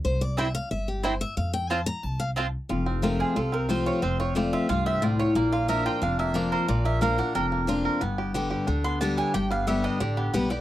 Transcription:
<<
  \new Staff \with { instrumentName = "Mandolin" } { \time 4/4 \key f \major \tempo 4 = 181 r4 <c' e' c'' g''>8 r4. <c' e' c'' g''>8 r8 | r4 <c' f' c'' a''>8 r4. <c' f' c'' a''>8 r8 | r4 bes'8 aes'8 a'8 bes'8 c''8 des''8 | c''8 des''8 d''8 e''8 f''8 e''8 d''8 des''8 |
d''8 f''8 e''8 g''8 f''8 e''8 d''8 c''8 | d''8 e''8 f''8 ges''8 g''8 r4. | r2 r8 c'''8 a''8 aes''8 | g''8 f''8 e''8 ees''8 d''8 g'8 b'8 d''8 | }
  \new Staff \with { instrumentName = "Five-string banjo" } { \time 4/4 \key f \major r4 <c' e' g'>8 r4. <c' e' g'>8 r8 | r4 <c' f'>8 r4. <c' f'>8 r8 | f'8 c'8 f'8 f'8 f'8 c'8 f'8 f'8 | c'8 f'8 f'8 f'8 f'8 c'8 f'8 f'8 |
bes8 f'8 bes'8 f'8 d'8 bes8 d'8 bes'8 | f'8 bes8 bes'8 d'8 bes'8 bes8 f'8 bes'8 | b8 g'8 g'8 g'8 d'8 b8 d'8 g'8 | g'8 b8 g'8 d'8 g'8 b8 g'8 g'8 | }
  \new Staff \with { instrumentName = "Steel-string acoustic guitar" } { \time 4/4 \key f \major << { c''8 d''8 e''8 f''8 e''8 g'8 c''8 e''8 | f''8 g''8 a''8 bes''8 a''8 f''8 r4 | r4 <f a c' f'>4 r4 <f a c' f'>4 | r4 <f a c' f'>4 r2 |
r4 <f bes d' f'>4 r4 <f bes d' f'>4 | r4 <f bes d' f'>8 <d' f'>8 r4 <f bes d' f'>4 | r4 <d g b g'>4 r4 <d g b g'>4 | r4 <d g b g'>4 r4 <d g b g'>8 <b g'>8 | } \\ { r1 | r1 | f,2 c2 | f,2 g,4 a,4 |
bes,2 f,2 | bes,2 f,2 | g,2 d2 | g,2 d2 | } >> }
  \new Staff \with { instrumentName = "Upright bass" } { \clef bass \time 4/4 \key f \major c,2 g,,2 | f,2 c,2 | f,,2 c,2 | f,,2 c,2 |
bes,,2 f,,2 | bes,,2 f,,2 | g,,2 d,2 | g,,2 a,,4 b,,4 | }
>>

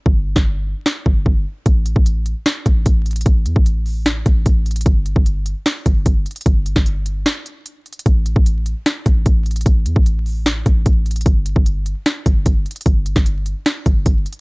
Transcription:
<<
  \new Staff \with { instrumentName = "808-style bass" } { \clef bass \time 4/4 \key c \major \tempo 4 = 150 g,,8. g,,4 r8. g,,8 g,,8 r8 | a,,8. a,,4 r8. a,,8 a,,4 | a,,8 e,16 a,,4.~ a,,16 a,,8 a,,4 | g,,8. g,,4 r8. g,,8 g,,8 r8 |
g,,8. g,,4~ g,,16 r2 | a,,8. a,,4 r8. a,,8 a,,4 | a,,8 e,16 a,,4.~ a,,16 a,,8 a,,4 | g,,8. g,,4 r8. g,,8 g,,8 r8 |
g,,8. g,,4 r8. g,,8 g,,8 r8 | }
  \new DrumStaff \with { instrumentName = "Drums" } \drummode { \time 4/4 bd8. <bd sn>16 r4 sn8 bd8 bd4 | <hh bd>8 hh16 bd16 hh8 hh8 <hh sn>8 <hh bd>8 <hh bd>8 hh32 hh32 hh32 hh32 | <hh bd>8 hh16 bd16 hh8 hho8 <hh sn>8 <hh bd>8 <hh bd>8 hh32 hh32 hh32 hh32 | <hh bd>8 hh16 bd16 hh8 hh8 <hh sn>8 <hh bd>8 <hh bd>8 hh32 hh32 hh32 hh32 |
<hh bd>8 hh16 <hh bd sn>16 hh8 hh8 <hh sn>8 hh8 \tuplet 3/2 { hh16 r16 r16 hh16 hh16 hh16 } | <hh bd>8 hh16 bd16 hh8 hh8 <hh sn>8 <hh bd>8 <hh bd>8 hh32 hh32 hh32 hh32 | <hh bd>8 hh16 bd16 hh8 hho8 <hh sn>8 <hh bd>8 <hh bd>8 hh32 hh32 hh32 hh32 | <hh bd>8 hh16 bd16 hh8 hh8 <hh sn>8 <hh bd>8 <hh bd>8 hh32 hh32 hh32 hh32 |
<hh bd>8 hh16 <hh bd sn>16 hh8 hh8 <hh sn>8 <hh bd>8 \tuplet 3/2 { <hh bd>16 r16 r16 hh16 hh16 r16 } | }
>>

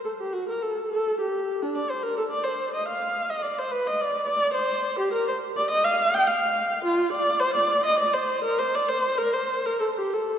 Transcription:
\new Staff \with { instrumentName = "Viola" } { \time 3/4 \key g \minor \tempo 4 = 105 a'16 g'16 fis'16 bes'16 a'8 a'8 g'8. d'16 | d''16 c''16 bes'16 a'16 d''16 c''8 ees''16 f''8. ees''16 | d''16 c''16 b'16 ees''16 d''8 d''8 c''8. g'16 | \key c \dorian bes'16 c''8 d''16 ees''16 f''8 g''16 f''4 |
f'8 d''8 c''16 d''8 ees''16 d''16 c''8 bes'16 | c''16 d''16 c''8 bes'16 c''8 bes'16 a'16 g'16 a'8 | }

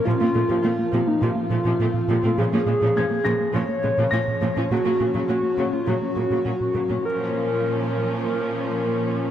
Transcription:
<<
  \new Staff \with { instrumentName = "Grand piano" } { \time 4/4 \key bes \minor \tempo 4 = 103 aes'''8 r2. r8 | r4 aes'''8 bes'''4. bes'''4~ | bes'''2 r2 | r1 | }
  \new Staff \with { instrumentName = "Soft synth lead" } { \time 4/4 \key bes \minor f'4 f'8. ees'16 f'2 | aes'2 des''2 | ges'4 ges'8. f'16 ges'2 | bes'1 | }
  \new Staff \with { instrumentName = "Synth drone" } { \time 4/4 \key bes \minor << { <c' f''>1 | <des' des''>1~ | <des' des''>1 | <des' des''>1 | } \\ { <f a'>1 | <f aes'>1 | <ges bes'>1 | <f bes'>1 | } >> }
  \new Staff \with { instrumentName = "Viola section" } { \clef bass \time 4/4 \key bes \minor <c f>16 <a c'>16 <f a>16 <c f>16 <a c'>16 r16 <c f>16 r16 <c f>16 r16 <f a>16 <c f>16 <a c'>16 r16 <c f>16 <a c'>16 | <des f>16 <f des'>16 <des aes>16 <des f>16 <f des'>16 r16 <des f>16 r16 <des f>16 r16 <des aes>16 <des f>16 <f des'>16 r16 <des f>16 <f des'>16 | <des ges>16 <ges des'>16 <des bes>16 <des ges>16 <ges des'>16 r16 <des ges>16 r16 <des ges>16 r16 <des bes>16 <des ges>16 <ges des'>16 r16 <des ges>16 <ges des'>16 | <f des'>1 | }
  \new Staff \with { instrumentName = "Analog synth bass" } { \clef bass \time 4/4 \key bes \minor bes,16 bes16 bes,16 bes,16 bes16 bes16 bes,16 bes16 bes,16 bes16 bes,16 bes,16 bes,16 bes,16 bes,16 bes,16 | bes,16 bes16 bes,16 bes,16 bes16 bes16 bes,16 bes16 bes,16 bes16 bes,16 bes,16 bes,16 bes,16 bes,16 bes,16 | bes,16 bes16 bes,16 bes,16 bes16 bes16 bes,16 bes16 bes,16 bes16 bes,16 bes,16 bes,16 bes,16 bes,16 bes,16 | r1 | }
  \new Staff \with { instrumentName = "Cello section" } { \clef bass \time 4/4 \key bes \minor bes,16 bes,16 bes,16 bes,16 bes,16 r16 bes,16 r16 bes,16 r16 bes,16 bes,16 bes,16 r16 bes,16 bes,16 | bes,16 bes,16 bes,16 bes,16 bes,16 r16 bes,16 r16 bes,16 r16 bes,16 bes,16 bes,16 r16 bes,16 bes,16 | bes,16 bes,16 bes,16 bes,16 bes,16 r16 bes,16 r16 bes,16 r16 bes,16 bes,16 bes,16 r16 bes,16 bes,16 | bes,1 | }
>>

